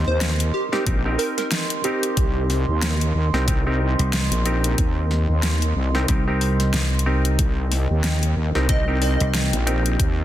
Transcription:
0.00 0.68 C4 loud
0.00 0.68 D#4 medium
0.00 0.68 G4 loud
0.00 0.68 A#4 loud
0.00 10.24 A#4 medium
0.00 10.24 D#5 medium
0.00 7.39 C6 medium
0.04 0.52 D#2 loud
0.04 0.20 C5 medium
0.04 snare soft
0.21 snare loud
0.21 closed hi-hat medium
0.40 closed hi-hat soft
0.54 0.66 G4 medium
0.72 0.84 C4 medium
0.72 0.85 D#4 medium
0.72 0.81 G4 medium
0.72 0.85 G4 medium
0.72 0.85 A#4 loud
0.72 snare medium
0.86 1.17 A#1 loud
0.86 1.03 C4 medium
0.86 1.03 D#4 medium
0.86 1.03 G4 medium
0.86 1.03 A#4 medium
0.86 kick loud
0.86 closed hi-hat medium
1.05 1.81 C4 medium
1.05 1.81 D#4 medium
1.05 1.81 G4 medium
1.05 1.81 A#4 loud
1.18 1.31 A#4 medium
1.18 open hi-hat medium
1.38 1.47 A#4 medium
1.38 snare soft
1.38 closed hi-hat soft
1.52 snare loud
1.52 closed hi-hat medium
1.70 closed hi-hat medium
1.84 3.29 C4 loud
1.84 3.29 D#4 loud
1.84 2.77 G4 loud
1.84 3.29 G4 medium
1.84 3.29 A#4 loud
1.84 closed hi-hat medium
2.03 closed hi-hat medium
2.17 2.65 C2 loud
2.17 kick loud
2.17 closed hi-hat medium
2.50 snare soft
2.50 open hi-hat medium
2.68 3.13 D#2 loud
2.82 snare loud
2.82 closed hi-hat medium
3.01 closed hi-hat soft
3.15 3.31 D#2 medium
3.33 3.96 C2 loud
3.33 3.46 C4 medium
3.33 3.46 D#4 medium
3.33 3.46 G4 medium
3.33 3.46 A#4 loud
3.33 snare medium
3.48 3.64 C4 medium
3.48 3.64 D#4 medium
3.48 3.64 G4 medium
3.48 3.64 A#4 medium
3.48 kick loud
3.48 closed hi-hat medium
3.67 4.42 C4 medium
3.67 4.42 D#4 medium
3.67 4.42 G4 medium
3.67 4.42 A#4 loud
3.99 4.29 C2 loud
3.99 closed hi-hat soft
4.13 snare loud
4.13 closed hi-hat medium
4.31 4.76 A#1 loud
4.31 closed hi-hat medium
4.46 5.90 C4 loud
4.46 5.90 D#4 loud
4.46 5.90 G4 loud
4.46 5.90 A#4 loud
4.46 closed hi-hat medium
4.64 closed hi-hat medium
4.78 5.27 D#2 loud
4.78 kick loud
4.78 closed hi-hat medium
5.11 snare soft
5.29 5.73 D#2 loud
5.43 snare loud
5.43 closed hi-hat medium
5.62 closed hi-hat soft
5.76 6.06 C2 loud
5.95 6.06 C4 medium
5.95 6.06 D#4 medium
5.95 6.06 G4 medium
5.95 6.07 A#4 loud
5.95 snare soft
6.08 6.71 C2 loud
6.08 6.24 C4 medium
6.08 6.24 D#4 medium
6.08 6.24 G4 medium
6.08 6.24 A#4 medium
6.08 kick loud
6.08 closed hi-hat medium
6.27 7.03 C4 medium
6.27 7.03 D#4 medium
6.27 7.03 G4 medium
6.27 7.03 A#4 loud
6.41 open hi-hat medium
6.60 snare soft
6.60 closed hi-hat soft
6.74 7.37 C2 loud
6.74 snare loud
6.74 closed hi-hat medium
6.99 closed hi-hat medium
7.06 8.51 C4 loud
7.06 8.51 D#4 medium
7.06 8.51 G4 medium
7.06 8.51 A#4 loud
7.25 closed hi-hat medium
7.39 7.87 C2 loud
7.39 10.24 G5 medium
7.39 kick loud
7.39 closed hi-hat medium
7.72 snare soft
7.72 open hi-hat medium
7.90 8.34 D#2 loud
8.04 snare loud
8.04 closed hi-hat medium
8.23 closed hi-hat soft
8.36 8.52 D#2 medium
8.55 9.18 C2 loud
8.55 8.67 C4 loud
8.55 8.67 D#4 medium
8.55 8.67 G4 medium
8.55 8.67 A#4 loud
8.55 snare soft
8.69 8.85 D#4 medium
8.69 8.85 G4 medium
8.69 8.85 A#4 medium
8.69 8.87 D#5 medium
8.69 kick loud
8.69 closed hi-hat medium
8.88 9.64 C4 medium
8.88 9.64 D#4 medium
8.88 9.64 G4 medium
8.88 9.64 A#4 loud
9.02 9.53 D#5 medium
9.02 open hi-hat medium
9.20 9.50 C2 medium
9.20 closed hi-hat soft
9.34 snare loud
9.34 closed hi-hat medium
9.53 9.97 A#1 loud
9.53 closed hi-hat medium
9.67 10.24 C4 loud
9.67 10.24 D#4 medium
9.67 10.24 G4 medium
9.67 10.24 A#4 loud
9.67 closed hi-hat medium
9.86 closed hi-hat medium
10.00 10.24 D#2 medium
10.00 kick loud
10.00 closed hi-hat medium

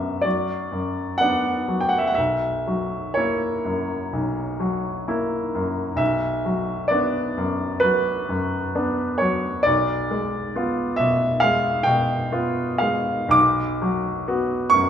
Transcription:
0.00 0.21 B1 soft
0.00 0.54 F#2 soft
0.00 0.25 F#3 soft
0.00 0.27 B3 soft
0.00 0.27 D4 soft
0.00 0.23 E5 medium
0.00 0.27 F#5 medium
0.22 1.01 F#3 soft
0.22 1.19 D5 medium
0.72 1.49 F#2 soft
1.18 1.65 B3 soft
1.18 1.65 D4 soft
1.18 1.79 F#5 medium
1.68 2.18 F#3 soft
1.80 1.90 G5 soft
1.89 1.99 F#5 medium
1.98 2.08 E5 medium
2.07 2.17 F#5 medium
2.14 4.08 B1 soft
2.14 3.15 E5 medium
2.67 3.45 F#3 soft
3.14 3.61 A#3 soft
3.14 3.61 E4 soft
3.14 5.06 C#5 medium
3.65 4.41 F#2 soft
4.13 5.94 B1 soft
4.60 5.36 F#3 soft
5.08 5.50 A#3 soft
5.08 5.51 E4 soft
5.55 6.00 F#2 soft
5.96 7.77 B1 soft
5.96 6.90 E5 medium
6.45 7.20 F#3 soft
6.88 7.33 B3 soft
6.88 7.34 D4 soft
6.88 7.81 D5 medium
7.37 8.10 F#2 soft
7.80 8.56 F#3 soft
7.80 9.20 B4 medium
8.29 9.03 F#2 soft
8.75 9.17 B3 soft
8.75 9.17 D4 soft
9.18 9.66 F#3 soft
9.18 9.65 C#5 medium
9.63 11.39 B1 soft
9.63 10.98 D5 medium
10.11 10.82 G#3 soft
10.56 10.96 B3 soft
10.56 10.96 F4 soft
10.96 11.70 B2 soft
10.96 11.42 E5 medium
11.40 12.14 G#3 soft
11.40 11.86 F5 medium
11.83 12.61 B2 soft
11.83 12.81 G5 medium
12.32 12.79 B3 soft
12.32 12.79 F4 soft
12.78 13.35 G#3 soft
12.78 13.33 F5 medium
13.28 14.89 B1 soft
13.28 14.71 D6 medium
13.82 14.55 F#3 soft
14.28 14.69 B3 soft
14.28 14.69 F#4 soft
14.70 14.89 F#2 soft
14.70 14.89 C#6 medium

